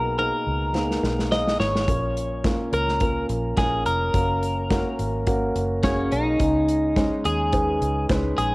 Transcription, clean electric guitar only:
0, 0, Header, 1, 2, 480
1, 0, Start_track
1, 0, Tempo, 565504
1, 1595, Time_signature, 4, 2, 24, 8
1, 7256, End_track
2, 0, Start_track
2, 0, Title_t, "Clean electric guitar"
2, 0, Program_c, 0, 27
2, 0, Note_on_c, 0, 70, 74
2, 149, Note_off_c, 0, 70, 0
2, 159, Note_on_c, 0, 70, 78
2, 1117, Note_off_c, 0, 70, 0
2, 1120, Note_on_c, 0, 75, 83
2, 1341, Note_off_c, 0, 75, 0
2, 1356, Note_on_c, 0, 73, 83
2, 2320, Note_off_c, 0, 73, 0
2, 2324, Note_on_c, 0, 70, 80
2, 2766, Note_off_c, 0, 70, 0
2, 3038, Note_on_c, 0, 68, 80
2, 3274, Note_off_c, 0, 68, 0
2, 3277, Note_on_c, 0, 70, 91
2, 4202, Note_off_c, 0, 70, 0
2, 4956, Note_on_c, 0, 61, 68
2, 5197, Note_on_c, 0, 63, 72
2, 5202, Note_off_c, 0, 61, 0
2, 6159, Note_on_c, 0, 68, 84
2, 6184, Note_off_c, 0, 63, 0
2, 6842, Note_off_c, 0, 68, 0
2, 7114, Note_on_c, 0, 68, 78
2, 7256, Note_off_c, 0, 68, 0
2, 7256, End_track
0, 0, End_of_file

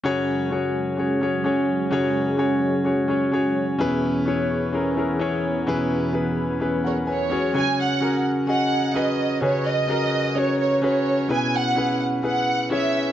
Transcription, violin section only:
0, 0, Header, 1, 2, 480
1, 0, Start_track
1, 0, Tempo, 468823
1, 46, Time_signature, 4, 2, 24, 8
1, 13434, End_track
2, 0, Start_track
2, 0, Title_t, "Violin section"
2, 0, Program_c, 0, 48
2, 7029, Note_on_c, 0, 73, 60
2, 7132, Note_off_c, 0, 73, 0
2, 7266, Note_on_c, 0, 73, 71
2, 7703, Note_off_c, 0, 73, 0
2, 7744, Note_on_c, 0, 80, 87
2, 7975, Note_off_c, 0, 80, 0
2, 7986, Note_on_c, 0, 78, 73
2, 8423, Note_off_c, 0, 78, 0
2, 8695, Note_on_c, 0, 78, 79
2, 9137, Note_off_c, 0, 78, 0
2, 9171, Note_on_c, 0, 75, 73
2, 9648, Note_off_c, 0, 75, 0
2, 9658, Note_on_c, 0, 73, 79
2, 9876, Note_off_c, 0, 73, 0
2, 9892, Note_on_c, 0, 75, 82
2, 10609, Note_off_c, 0, 75, 0
2, 10616, Note_on_c, 0, 73, 80
2, 10839, Note_off_c, 0, 73, 0
2, 10851, Note_on_c, 0, 73, 75
2, 11072, Note_off_c, 0, 73, 0
2, 11100, Note_on_c, 0, 73, 76
2, 11540, Note_off_c, 0, 73, 0
2, 11585, Note_on_c, 0, 80, 84
2, 11815, Note_off_c, 0, 80, 0
2, 11827, Note_on_c, 0, 78, 87
2, 12297, Note_off_c, 0, 78, 0
2, 12551, Note_on_c, 0, 78, 74
2, 12986, Note_off_c, 0, 78, 0
2, 13030, Note_on_c, 0, 76, 72
2, 13434, Note_off_c, 0, 76, 0
2, 13434, End_track
0, 0, End_of_file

